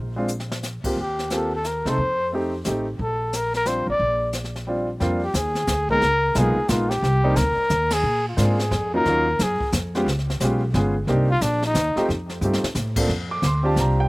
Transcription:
Already playing: A#1
0.16 G#3 C4 D4 F4
0.28 hi-hat pedal
0.40 snare
0.52 snare
0.63 snare, hi-hat pedal
0.84 A#3 C4 F4 G4, muted upright bass stroke, kick, crash
0.96 D#2 G4, brush sweep, kick
1.19 snare
1.30 A#3 C4 F4 G4, snare, hi-hat pedal
1.35 A4
1.55 A4
1.64 A#4, snare, hi-hat pedal
1.85 C3 A3 C4 D#4 A4 C5, snare
1.98 F2, brush sweep, kick
2.32 A3 C4 D#4 G4
2.64 A1 A3 C4 D#4 G4, snare, hi-hat pedal
2.99 A#1 A4, brush sweep, kick
3.33 A#4, snare, hi-hat pedal
3.54 A#4, snare
3.65 G3 C4 D4 F4 C5, snare, hi-hat pedal
3.87 A1 D5
3.99 A#1, brush sweep, kick
4.33 snare, hi-hat pedal
4.44 snare
4.56 snare
4.67 G3 C4 D4 F4
5.00 F2 G3 A#3 C4 D4 F4, brush sweep, kick, snare
5.24 G4
5.34 D#2 G#4, kick, snare, hi-hat pedal
5.55 snare
5.67 D2, snare, hi-hat pedal
5.89 G#3 A#3 B3 D#4 G#4 A#4, kick
6.01 C#2, brush sweep, snare
6.35 B1 G#3 A#3 B3 D#4 F4 G#4, kick, snare, hi-hat pedal
6.56 muted upright bass stroke
6.68 A#1 G#3 A#3 B3 D#4 F4, kick, snare, hi-hat pedal
6.89 G4, snare
7.02 C2, brush sweep, kick, snare
7.24 G3 A#3 C4 D4 D#4
7.36 D2 A#4, kick, snare, hi-hat pedal
7.57 muted upright bass stroke
7.70 D#2, kick, snare, hi-hat pedal
7.90 G#4, snare, ride
8.03 A#2, brush sweep
8.29 F4
8.37 G#2 G#3 A#3 C4 D4 F4 G#4, kick, snare, hi-hat pedal
8.59 snare
8.71 F2, kick, snare
8.94 F#3 A#3 C#4 D#4 F4 A#4
9.05 D#2 F#3 A#3 C#4 D#4 F4, brush sweep, kick, snare
9.39 F#2 G#4, kick, snare, hi-hat pedal
9.60 muted upright bass stroke, kick
9.72 F2, snare, hi-hat pedal
9.95 G#3 B3 C#4 F4 G4, snare
10.06 C#2, brush sweep, kick, snare
10.19 snare
10.30 snare
10.40 B1 G#3 B3 C#4 F4 G4, kick, snare, hi-hat pedal
10.74 G1 G#3 B3 C#4 F4 G#4, kick, snare
11.07 C2 A#3 C4 D4 D#4 G4, brush sweep, kick, snare
11.30 F4
11.41 A#1 D4, kick, snare, hi-hat pedal
11.62 D#4, snare
11.74 D#2, kick, snare, hi-hat pedal
11.96 A3 C4 D#4 F4 G4, muted upright bass stroke, snare
12.09 F2, brush sweep, kick, snare
12.29 snare
12.41 G2 A3 C4 D#4 F4 G4, hi-hat pedal
12.53 snare
12.63 muted upright bass stroke, snare
12.75 A2, snare, hi-hat pedal
12.96 A#3 C4 D4 F4 A4, kick, crash
13.09 F2, brush sweep, snare
13.31 D6
13.42 D2 C6, kick, snare, hi-hat pedal
13.63 C4 D4 F4 G4 A5
13.76 C2 A#5, kick, snare, hi-hat pedal
14.00 G5

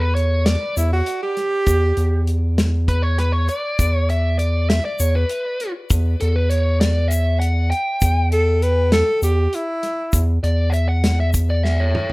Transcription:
Already playing: E2
0.00 B4
0.15 C#5, closed hi-hat
0.46 D5, snare, closed hi-hat
0.77 E2 E4, snare, closed hi-hat, shaker
0.93 F#4
1.06 closed hi-hat
1.23 G4
1.37 snare, closed hi-hat
1.66 E2, kick, closed hi-hat, shaker
1.97 E2, closed hi-hat, shaker
2.27 closed hi-hat
2.58 snare, closed hi-hat
2.88 B4, kick, closed hi-hat
3.02 C#5
3.19 B4, snare, closed hi-hat
3.32 C#5
3.49 D5, closed hi-hat, shaker
3.79 E2, kick, closed hi-hat, shaker
3.93 C#5
4.09 E5, closed hi-hat
4.39 D5, closed hi-hat
4.70 E5, snare, closed hi-hat
4.85 D5
4.99 E2 C#5, closed hi-hat, shaker
5.16 B4
5.29 closed hi-hat
5.60 closed hi-hat
5.90 E2, kick, closed hi-hat, shaker
6.20 E2 A4, closed hi-hat
6.36 B4
6.50 C#5, closed hi-hat
6.80 D5, snare, closed hi-hat
7.08 E5, closed hi-hat, shaker
7.40 F#5, closed hi-hat
7.70 G5, closed hi-hat
8.01 E2, kick, closed hi-hat, shaker
8.32 A4, closed hi-hat
8.62 B4, closed hi-hat
8.92 A4, snare, closed hi-hat
9.22 E2 G4, closed hi-hat, shaker
9.53 E4, closed hi-hat
9.83 snare, closed hi-hat
10.13 E2, kick, closed hi-hat, shaker
10.43 E2 D5, closed hi-hat
10.70 E5 F#5, closed hi-hat, shaker
10.89 F#5
11.04 snare, closed hi-hat
11.20 E5
11.34 kick, closed hi-hat, shaker
11.50 D5
11.63 E5, snare
11.80 C#5
11.95 mid tom
12.10 floor tom

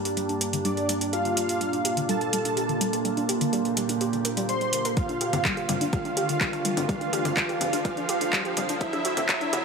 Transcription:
Already playing: G2 G3 A#3 D4 G4 D5 A5, riser
0.05 G4, closed hi-hat
0.17 G3, closed hi-hat
0.29 D4, closed hi-hat
0.41 G4, closed hi-hat
0.53 D3, closed hi-hat
0.65 G3 D4 D5, closed hi-hat
0.77 G4, closed hi-hat
0.89 G3, closed hi-hat
1.01 D4, closed hi-hat
1.13 A#2 A#3 F4 G4 F5, closed hi-hat
1.25 D3 F5, closed hi-hat
1.37 G3, closed hi-hat
1.49 G4 C6, closed hi-hat
1.61 G3, closed hi-hat
1.73 D4, closed hi-hat
1.85 G4, closed hi-hat
1.97 D3, closed hi-hat
2.09 G3 A4 A5, closed hi-hat
2.21 G4, closed hi-hat
2.33 G3, closed hi-hat
2.45 D4, closed hi-hat
2.57 G4, closed hi-hat
2.69 D3, closed hi-hat
2.81 G3, closed hi-hat
2.93 G4, closed hi-hat
3.05 G3 G4, closed hi-hat
3.17 D4, closed hi-hat
3.29 G4, closed hi-hat
3.41 D3, closed hi-hat
3.53 G3, closed hi-hat
3.65 G4, closed hi-hat
3.77 G3, closed hi-hat
3.89 D4, closed hi-hat
4.01 G4, closed hi-hat
4.13 D3, closed hi-hat
4.25 A#4, closed hi-hat
4.37 G3, closed hi-hat
4.49 G3 C5 C6, closed hi-hat
4.61 G3, closed hi-hat
4.73 A#4, closed hi-hat
4.85 A#4, closed hi-hat
4.97 D2 D3 G3 A3 D4 F4 F5, kick, closed hi-hat
5.09 D4, closed hi-hat
5.20 G4 A4, closed hi-hat
5.33 D3, cross-stick, closed hi-hat, low conga
5.38 D5
5.45 G3, kick, clap, closed hi-hat
5.57 G4, closed hi-hat
5.69 G3, closed hi-hat, low conga
5.81 D4, closed hi-hat
5.93 G3 F4 F5, kick, cross-stick, closed hi-hat
6.05 D4, closed hi-hat
6.17 G4, closed hi-hat
6.29 D3, closed hi-hat
6.41 G3, kick, clap, closed hi-hat
6.53 G4, cross-stick, closed hi-hat
6.65 G3, closed hi-hat
6.77 D4, closed hi-hat, low conga
6.89 G3 F4 F5, kick, closed hi-hat
7.01 D4, closed hi-hat
7.13 G4, cross-stick, closed hi-hat
7.25 D3, closed hi-hat, low conga
7.37 G3, kick, clap, closed hi-hat
7.49 G4, closed hi-hat
7.61 G3, closed hi-hat, low conga
7.73 D4, cross-stick, closed hi-hat
7.85 G3 F4 F5, kick, closed hi-hat
7.97 D4, closed hi-hat
8.09 G4, closed hi-hat
8.21 D3, closed hi-hat
8.33 G3, kick, cross-stick, clap, closed hi-hat
8.45 G4, closed hi-hat
8.57 G3, closed hi-hat, low conga
8.69 D4, closed hi-hat
8.81 B2 F#3 B3 D4 E4 F#4 E5, kick, closed hi-hat
8.93 D4 F#4, cross-stick, closed hi-hat
9.05 F#4 C#5, closed hi-hat
9.17 D3, closed hi-hat, low conga
9.29 F#3 E4 E5, kick, clap, closed hi-hat
9.41 D4, closed hi-hat
9.53 F#4, cross-stick, closed hi-hat, low conga

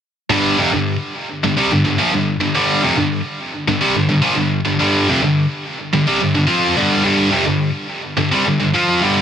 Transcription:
0.30 G2 D3 G3
0.58 F2 C3
0.73 G2 D3
1.43 G2 D3
1.57 C3 G3
1.72 G2 D3
1.85 G2 D3
1.99 A#2 F3
2.13 G2 D3
2.41 G2 D3
2.55 G2 D3 G3
2.82 F2 C3
2.97 G2 D3
3.68 G2 D3
3.81 C3 G3
3.96 G2 D3
4.09 G2 D3
4.22 A#2 F3
4.36 G2 D3
4.65 G2 D3
4.79 G2 D3 G3
5.09 F2 C3
5.22 G2 D3
5.94 G2 D3
6.07 C3 G3
6.21 G2 D3
6.35 G2 D3
6.47 F3 C4 F4
6.76 G2 D3 G3
7.04 G2 D3 G3
7.31 F2 C3
7.46 G2 D3
8.17 G2 D3
8.32 C3 G3
8.46 G2 D3
8.60 G2 D3
8.74 F3 C4 F4
9.02 G2 D3 G3

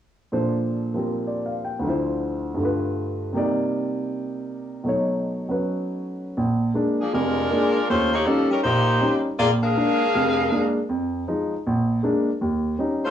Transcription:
0.32 A#2 F3 D4 A4 C5
0.94 F3 G3 C4 A#4
1.27 D5
1.46 F5
1.64 G5
1.79 D2 D3
1.84 F3 E4
1.90 C5
2.54 G2 D3
2.59 A3 F4
2.65 B4
3.32 C3 G3 A#3 D#4
3.37 D5
4.84 B2 F#3 A3 D#4
4.89 C#5
5.49 F#3 C#4 B4
6.37 A#1
6.74 G#3 A#3 D4
7.00 F3 A#3 D4 G#4
7.13 F1 F2 G#3 D4 F4 A#4
7.51 G#3 A#3 D4
7.90 D#2 A3 C#4 F4 C5
8.13 A#3 D#4 G4 C#5
8.26 F3 G3 A#3 C#4 D#4 A4
8.50 G3 C#4 D#4 A#4
8.64 A#1 A#2 A#3 D#4 G4 C5
9.01 G3 C#4 D#4
9.39 A#1 A#3 F4 G#4 D5
9.63 D4 G#4 A#4 F5
9.76 G#3 A#3 D4
10.15 F1 F2
10.52 G#3 A#3 D4
10.89 F2
11.28 F3 G#3 D#4
11.67 A#1
12.03 G#3 A#3 D4
12.41 D#2
12.79 G3 C#4 D#4
13.04 A3 C#4 F4 C5

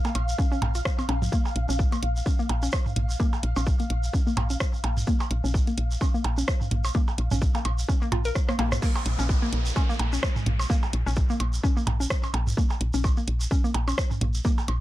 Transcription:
Already playing: F5
0.05 A#3, closed hi-hat, percussion blips, shekere
0.15 A#1, closed hi-hat, percussion blips
0.29 shekere
0.38 C#4, kick, shekere
0.52 C#4, shekere
0.62 A#1, closed hi-hat, mid tom, percussion blips
0.75 F4, closed hi-hat, shekere
0.85 kick, cross-stick, shekere
0.99 C4, percussion blips, shekere
1.09 A#1 C#4, closed hi-hat, percussion blips
1.22 F3, mid tom, shekere
1.32 A#3, kick, shekere
1.45 percussion blips, shekere
1.56 A#1, closed hi-hat
1.69 A#1 C#4, shekere
1.79 kick, shekere
1.92 A#3, closed hi-hat, percussion blips, shekere
2.03 A#1, closed hi-hat
2.16 shekere
2.26 C#4, kick, shekere
2.39 A#3, shekere
2.49 A#1, closed hi-hat, percussion blips
2.63 C#4, shekere
2.71 kick, cross-stick, percussion blips, shekere
2.86 mid tom, shekere
2.96 A#1, closed hi-hat, mid tom
3.10 shekere
3.19 A#3, kick, shekere
3.33 percussion blips, shekere
3.43 A#1, closed hi-hat
3.56 A#1 C#4, percussion blips, shekere
3.66 kick, shekere
3.80 A#3, closed hi-hat, shekere
3.90 A#1, closed hi-hat
4.04 shekere
4.13 C#4, kick, shekere
4.27 A#3, shekere
4.37 A#1, closed hi-hat, mid tom, percussion blips
4.50 C#4, closed hi-hat, shekere
4.60 kick, cross-stick, shekere
4.74 shekere
4.84 A#1, closed hi-hat, percussion blips
4.97 mid tom, shekere
5.07 A#3, kick, shekere
5.20 percussion blips, shekere
5.31 A#1, closed hi-hat
5.44 A#1 C#4, shekere
5.54 kick, shekere
5.67 A#3, closed hi-hat, shekere
5.78 A#1, closed hi-hat
5.91 shekere
6.01 C#4, kick, percussion blips, shekere
6.14 A#3, shekere
6.24 A#1, closed hi-hat, percussion blips
6.38 C#4, shekere
6.48 kick, cross-stick, shekere
6.61 mid tom, shekere
6.71 A#1, closed hi-hat, mid tom
6.85 percussion blips, shekere
6.94 A#3, kick, shekere
7.08 percussion blips, shekere
7.18 A#1, closed hi-hat
7.31 A#1 C#4, mid tom, shekere
7.42 kick, shekere
7.54 A#3, closed hi-hat, percussion blips, shekere
7.65 A#1, closed hi-hat, percussion blips
7.79 shekere
7.89 C#4, kick, shekere
8.02 A#3, shekere
8.12 A#1 F4, closed hi-hat, mid tom, percussion blips
8.25 A#4, closed hi-hat, shekere
8.35 kick, cross-stick, shekere
8.49 A#3, cross-stick, percussion blips, shekere
8.59 A#1 A#3, closed hi-hat, zap, percussion blips
8.72 cross-stick, mid tom, shekere
8.82 A#3, kick, crash, downlifter, shekere
8.95 percussion blips, shekere
9.06 A#1, closed hi-hat
9.19 A#1 C#4, shekere
9.29 kick, shekere
9.42 A#3, shekere
9.53 A#1, closed hi-hat
9.66 shekere
9.76 C#4, kick, percussion blips, shekere
9.89 A#3, shekere
9.99 A#1, closed hi-hat, percussion blips
10.13 C#4, shekere
10.23 kick, cross-stick, shekere
10.36 mid tom, shekere
10.46 A#1, closed hi-hat, mid tom
10.59 percussion blips, shekere
10.70 A#3, kick, shekere
10.82 percussion blips, shekere
10.93 A#1, closed hi-hat
11.06 A#1 C#4, shekere
11.16 kick, shekere
11.30 A#3, shekere
11.40 A#1, closed hi-hat, percussion blips
11.53 shekere
11.63 C#4, kick, shekere
11.77 A#3, shekere
11.87 A#1, closed hi-hat, mid tom, percussion blips
12.00 C#4, shekere
12.10 kick, cross-stick, shekere
12.23 percussion blips, shekere
12.34 A#1, closed hi-hat, percussion blips
12.47 mid tom, shekere
12.57 A#3, kick, shekere
12.70 percussion blips, shekere
12.81 A#1, closed hi-hat
12.94 A#1 C#4, shekere
13.04 kick, percussion blips, shekere
13.17 A#3, shekere
13.28 A#1, closed hi-hat
13.41 shekere
13.51 C#4, kick, shekere
13.64 A#3, shekere
13.74 A#1, closed hi-hat, percussion blips
13.88 C#4, percussion blips, shekere
13.98 kick, cross-stick, shekere
14.11 mid tom, shekere
14.21 A#1, closed hi-hat, mid tom
14.34 shekere
14.44 A#3, kick, shekere
14.58 percussion blips, shekere
14.68 A#1, closed hi-hat, percussion blips

